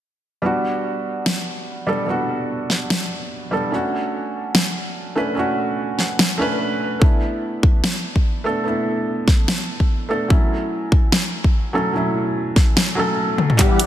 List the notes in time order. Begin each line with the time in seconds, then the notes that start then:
0.42 G3 B3 D4
0.46 F#4
1.26 snare
1.87 G3 B3 D4 A4
2.06 G3 B3 D4 F#4
2.70 snare
2.90 snare
3.51 G3 B3 D4 A4
3.71 A3 C#4 D4 F#4
4.55 snare
5.16 A3 C#4 D4 B4
5.35 A3 C#4 D4
5.39 F#4
5.99 snare
6.19 snare
6.38 A3 C#4 D4
6.42 B4
6.99 A3 B3 D4 E4, kick
7.63 kick
7.84 snare
8.16 kick
8.44 A3 B3 D4 A4
8.64 A3 B3 D4 E4
9.28 kick, snare
9.48 snare
9.80 kick
10.09 A3 B3 D4 A4
10.28 F#3 A3 C#4 E4, kick
10.92 kick
11.12 snare
11.44 kick
11.73 F#3 A3 C#4 A4
11.93 F#3 A3 C#4
11.97 E4
12.56 kick, snare
12.77 snare
12.95 F#3 A3 C#4 A4
13.38 high tom
13.50 mid tom
13.57 D3 E3 G3 B3 D4 E4 G4 D5 F#5, kick, clap, closed hi-hat, riser
13.61 F#5
13.80 closed hi-hat